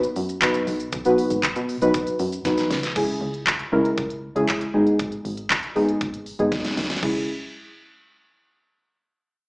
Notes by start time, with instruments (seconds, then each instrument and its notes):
0.03 closed hi-hat, shaker
0.16 fm bass F#2, open hi-hat, shaker
0.29 closed hi-hat, shaker
0.42 synth stab F#3 B3 D#4 F#4 B4, kick, clap, closed hi-hat, shaker
0.54 closed hi-hat, shaker
0.67 fm bass B1, open hi-hat, shaker
0.80 closed hi-hat, shaker
0.92 fm bass B1, kick, closed hi-hat, shaker
1.05 synth stab F#3 B3 D#4 F#4 B4, closed hi-hat, shaker
1.18 open hi-hat, shaker
1.30 fm bass G#1, closed hi-hat, shaker
1.43 kick, clap, closed hi-hat, shaker
1.56 fm bass B2, closed hi-hat, shaker
1.69 open hi-hat, shaker
1.81 synth stab F#3 B3 D#4 F#4 B4, closed hi-hat, shaker
1.94 kick, closed hi-hat, shaker
2.07 closed hi-hat, shaker
2.19 fm bass F#2, open hi-hat, shaker
2.33 closed hi-hat, shaker
2.45 fm bass B1, synth stab F#3 B3 D#4 F#4 B4, kick, snare, closed hi-hat, shaker
2.58 snare, closed hi-hat, shaker
2.71 fm bass C#2, snare, open hi-hat, shaker
2.83 snare, closed hi-hat, shaker
2.96 fm bass C#2, synth stab G#3 C#4 E4 G#4, kick, closed hi-hat, crash
3.08 closed hi-hat
3.21 fm bass C#2
3.34 closed hi-hat
3.47 kick, clap, closed hi-hat
3.59 closed hi-hat
3.72 fm bass C#2, synth stab G#3 C#4 E4 A#4
3.85 closed hi-hat
3.98 fm bass C#2, kick, closed hi-hat
4.10 closed hi-hat
4.35 fm bass C#2, synth stab G#3 C#4 E4 G#4, closed hi-hat
4.48 kick, clap, closed hi-hat
4.61 closed hi-hat
4.74 fm bass G#1, synth stab G#3 B3 D#4 G#4
4.87 closed hi-hat
4.99 fm bass G#1, kick, closed hi-hat
5.12 closed hi-hat
5.25 fm bass G#1, open hi-hat
5.37 closed hi-hat
5.50 kick, clap, closed hi-hat
5.63 closed hi-hat
5.75 fm bass G#1, synth stab G#3 B3 D#4 G#4, open hi-hat
5.89 closed hi-hat
6.01 fm bass G#1, kick, closed hi-hat
6.14 closed hi-hat
6.26 open hi-hat
6.39 fm bass G#1, synth stab G#3 B3 D#4 G#4, closed hi-hat
6.52 kick, snare, closed hi-hat
6.58 snare
6.64 snare, closed hi-hat
6.71 snare
6.77 fm bass D#2, snare, open hi-hat
6.84 snare
6.90 snare, closed hi-hat
6.96 snare
7.03 fm bass C#2, synth stab G#3 C#4 E4 G#4, kick, crash